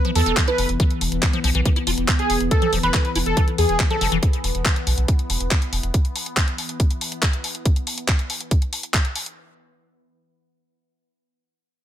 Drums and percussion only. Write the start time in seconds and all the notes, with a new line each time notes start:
0.05 closed hi-hat
0.15 open hi-hat
0.26 closed hi-hat
0.37 kick, clap, closed hi-hat
0.48 closed hi-hat
0.58 open hi-hat
0.69 closed hi-hat
0.80 kick, closed hi-hat
0.91 closed hi-hat
1.01 open hi-hat
1.12 closed hi-hat
1.23 kick, clap, closed hi-hat
1.33 closed hi-hat
1.44 open hi-hat
1.55 closed hi-hat
1.66 kick, closed hi-hat
1.76 closed hi-hat
1.87 open hi-hat
1.98 closed hi-hat
2.08 kick, clap, closed hi-hat
2.19 closed hi-hat
2.30 open hi-hat
2.41 closed hi-hat
2.51 kick, closed hi-hat
2.62 closed hi-hat
2.73 open hi-hat
2.83 closed hi-hat
2.94 kick, clap, closed hi-hat
3.05 closed hi-hat
3.16 open hi-hat
3.26 closed hi-hat
3.37 kick, closed hi-hat
3.48 closed hi-hat
3.58 open hi-hat
3.69 closed hi-hat
3.80 kick, clap, closed hi-hat
3.90 closed hi-hat
4.01 open hi-hat
4.12 closed hi-hat
4.23 kick, closed hi-hat
4.33 closed hi-hat
4.44 open hi-hat
4.55 closed hi-hat
4.66 kick, clap, closed hi-hat
4.76 closed hi-hat
4.87 open hi-hat
4.98 closed hi-hat
5.08 kick, closed hi-hat
5.19 closed hi-hat
5.30 open hi-hat
5.41 closed hi-hat
5.51 kick, clap, closed hi-hat
5.62 closed hi-hat
5.73 open hi-hat
5.83 closed hi-hat
5.94 kick, closed hi-hat
6.05 closed hi-hat
6.16 open hi-hat
6.26 closed hi-hat
6.37 kick, clap, closed hi-hat
6.48 closed hi-hat
6.58 open hi-hat
6.69 closed hi-hat
6.80 kick, closed hi-hat
6.91 closed hi-hat
7.01 open hi-hat
7.12 closed hi-hat
7.23 kick, clap, closed hi-hat
7.33 closed hi-hat
7.44 open hi-hat
7.55 closed hi-hat
7.66 kick, closed hi-hat
7.76 closed hi-hat
7.87 open hi-hat
7.98 closed hi-hat
8.08 kick, clap, closed hi-hat
8.19 closed hi-hat
8.30 open hi-hat
8.41 closed hi-hat
8.51 kick, closed hi-hat
8.62 closed hi-hat
8.73 open hi-hat
8.83 closed hi-hat
8.94 kick, clap, closed hi-hat
9.05 closed hi-hat
9.16 open hi-hat
9.26 closed hi-hat